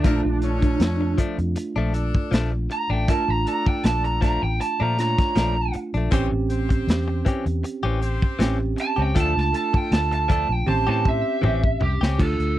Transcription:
Already playing: D4
0.03 A#1 F3 A3 A#3 D4 F4 A4 A#4, kick, closed hi-hat
0.24 A#1, muted clean electric guitar stroke
0.42 C#4 D4 A4 C#5, closed hi-hat
0.62 muted clean electric guitar stroke, kick, closed hi-hat
0.80 F2, snare, closed hi-hat
1.01 muted clean electric guitar stroke
1.18 F3 A3 D4, kick, closed hi-hat
1.38 F2, muted clean electric guitar stroke, closed hi-hat
1.56 muted clean electric guitar stroke, closed hi-hat
1.76 A#1 F3 A3 D4
1.93 D4 A4 D5, muted clean electric guitar stroke, closed hi-hat
2.15 kick
2.31 A#1 F3 A3 D4, snare, closed hi-hat
2.52 muted clean electric guitar stroke
2.70 A#5, muted clean electric guitar stroke, closed hi-hat
2.90 A1 A3 D4 G5
3.07 A3 A#3 D4 F4 A4 A#4 A5, kick, closed hi-hat
3.28 A1 A#5, muted clean electric guitar stroke
3.46 D4 A4 D5 A#5, closed hi-hat
3.66 G5, muted clean electric guitar stroke, muted fingered electric bass stroke, kick
3.84 A#1 A5, snare, closed hi-hat
4.04 A#5, muted clean electric guitar stroke, closed hi-hat
4.21 F3 A3 D4 A#5, kick, snare, closed hi-hat
4.42 A1 G5, muted clean electric guitar stroke
4.60 A5, muted clean electric guitar stroke, closed hi-hat
4.80 A#2 F3 A3 D4 A#5
4.97 A3 C#4 D4 F4 C#5 A#5, muted clean electric guitar stroke, snare, closed hi-hat
5.18 kick, snare, closed hi-hat
5.36 A#1 F3 A3 D4, snare, closed hi-hat
5.57 muted clean electric guitar stroke
5.73 muted clean electric guitar stroke, closed hi-hat
5.94 A#1 A3 D4, closed hi-hat
6.10 A1 E3 C4 C#4 G4 C5, kick, closed hi-hat
6.32 A1, muted clean electric guitar stroke
6.49 C4 G4 C5, closed hi-hat
6.69 muted clean electric guitar stroke, kick, closed hi-hat
6.87 E2, snare, closed hi-hat
7.08 muted clean electric guitar stroke
7.25 E3 C4 C#4 G4, kick, closed hi-hat
7.46 E2, muted clean electric guitar stroke, closed hi-hat
7.64 muted clean electric guitar stroke, closed hi-hat
7.83 A1 E3 C4 C#4 G4
8.01 C4 G4 C5, muted clean electric guitar stroke, closed hi-hat
8.22 kick
8.39 A1 E3 C4 C#4 G4, snare, closed hi-hat
8.59 muted clean electric guitar stroke
8.77 muted clean electric guitar stroke, closed hi-hat
8.81 A5
8.96 C#2 C4 C#4 G4
9.02 G5
9.13 D2 F3 A3 D4 F4 A4, kick, closed hi-hat
9.20 A5
9.35 C#2, muted clean electric guitar stroke, snare
9.39 A5
9.51 A3 D4 F4 A4, closed hi-hat
9.56 A5
9.73 G5, muted clean electric guitar stroke, muted fingered electric bass stroke, kick
9.91 D2 A5, snare, closed hi-hat
10.12 A5, muted clean electric guitar stroke, closed hi-hat
10.28 F3 A3 D4 A4 A5, kick, closed hi-hat
10.49 A#1 G5, muted clean electric guitar stroke
10.65 A1 C4 C#4 E4 G4 C5 A5, muted clean electric guitar stroke, high tom
10.87 A2 E3 C4 C#4 G4 A5
11.04 C4 G4 C5, muted clean electric guitar stroke, kick
11.09 E5
11.42 A1 E3 C4 C#4 G4, mid tom
11.63 muted clean electric guitar stroke, kick
11.80 C2 G4, muted clean electric guitar stroke, floor tom
12.01 C#2 C4 C#4 G4, snare
12.18 D2 A3 D4 F4 A4, kick, crash
12.39 D2, closed hi-hat

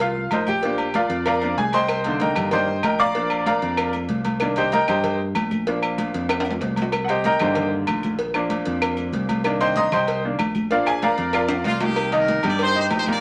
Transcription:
Already playing: C2
0.00 F4 F5, cowbell, high conga
0.16 high conga
0.31 A#1 D#4 A#4 C5 D#5, cowbell, high conga, low agogo
0.47 G4 G5, high conga, low agogo
0.63 F3 A#3 D4, cowbell, high conga
0.78 high conga, low agogo
0.94 F4 A#4 D5 F5, cowbell, high conga, low agogo
1.09 F2, cowbell, high conga
1.26 A#4 D5 F5 A#5, cowbell, high conga, low agogo
1.41 F3 A#3 D4, high conga, low agogo
1.57 C2 G#4 G#5, cowbell, high conga
1.73 C5 D#5 G5 C6, cowbell, high conga, low agogo
1.88 cowbell, high conga, low agogo, claves
2.04 D3 D#3 A#3, cowbell, high conga, low agogo
2.20 A#4 D#5 G5 A#5, cowbell, high conga
2.36 G2, cowbell, high conga, low conga, low agogo, claves
2.51 D#3 A#3 D4 C5 D#5 G5 C6, cowbell, high conga, low conga, low agogo
2.69 high conga
2.83 A#1 A#4 D#5 G5 A#5, cowbell, high conga, low agogo, claves
2.99 D5 F5 A#5 D6, high conga, low agogo
3.15 F3 A#3 D4, cowbell, high conga
3.30 high conga, low agogo, claves
3.46 A#4 D5 F5 A#5, cowbell, high conga, low agogo
3.62 F2, cowbell, high conga
3.77 cowbell, high conga, low agogo, claves
3.93 high conga, low agogo
4.09 C2, cowbell, high conga
4.25 cowbell, high conga, low agogo
4.40 D#3 A#3 D4, cowbell, high conga, low agogo, claves
4.56 G4 C5 D#5 G5, cowbell, high conga, low agogo
4.72 A#4 D#5 G5 A#5, cowbell, high conga
4.88 G2 G4 C5 D#5 G5, cowbell, high conga, low conga, low agogo, claves
5.04 cowbell, high conga, low conga, low agogo
5.20 high conga
5.35 A#1, cowbell, high conga, low agogo, claves
5.51 high conga, low agogo
5.67 F3 A#3 D4, cowbell, high conga
5.82 high conga, low agogo, claves
5.98 cowbell, high conga, low agogo
6.14 F2, cowbell, high conga
6.29 cowbell, high conga, high timbale, low agogo, claves
6.40 high timbale
6.45 high conga, low agogo
6.51 low timbale
6.61 C2, cowbell, high conga, low timbale
6.76 cowbell, high conga, low agogo
6.82 low timbale
6.92 cowbell, high conga, low agogo, claves
7.05 F#5, low agogo
7.09 G4 C5 D#5 G5, cowbell, high conga
7.24 A#4 D#5 G5 A#5, cowbell, high conga
7.39 G2 D3 D#3 A#3 G4 C5 D#5 G5, cowbell, high conga, low conga, low agogo, claves
7.55 cowbell, high conga, low conga, low agogo
7.73 high conga
7.87 A#1, cowbell, high conga, low agogo, claves
8.03 high conga, low agogo
8.19 cowbell, high conga
8.34 F3 A#3 D4, high conga, low agogo, claves
8.50 cowbell, high conga, low agogo
8.66 F2, cowbell, high conga
8.82 cowbell, high conga, low agogo, claves
8.97 high conga, low agogo
9.13 C2, cowbell, high conga
9.29 cowbell, high conga, low agogo
9.44 D#3 A#3 D4, cowbell, low agogo, claves
9.60 C5 D#5 G5 C6, cowbell, high conga, low agogo
9.76 D#5 A#5 C6 D#6, cowbell, high conga
9.92 C2 C5 D#5 G5 C6, cowbell, high conga, low conga, low agogo, claves
10.07 cowbell, high conga, low agogo
10.24 D#3 A#3 D4, high conga
10.39 A#1, cowbell, high conga, low agogo, claves
10.55 high conga, low agogo
10.71 F3 A#3 D4 F4 A#4 D5 F5, cowbell, high conga
10.86 G#4 G#5, high conga, low agogo, claves
11.02 A#4 D5 F5 A#5, cowbell, high conga, low agogo
11.18 F2, cowbell, high conga
11.33 F4 A#4 D5 F5, cowbell, high conga, low agogo, claves
11.49 high conga, high timbale, low agogo
11.64 C2 F4, cowbell, high conga, low timbale
11.80 A#3 D#4 G4, cowbell, high conga, low timbale, low agogo
11.96 cowbell, low agogo
12.12 D#3 D#4 G4 A#4 D#5, cowbell, high conga, low agogo
12.28 cowbell, high conga
12.43 G2 G3 G4 D5 G5, cowbell, high conga, low conga, low agogo
12.59 D#4 G4, cowbell, high conga, low agogo
12.63 C5
12.76 D#4 C5 D#5 D#6, high conga
12.90 A#1 C5, cowbell, high conga, low timbale, low agogo
13.06 A#3 F4 A#4 D5 A#5, high conga, low agogo

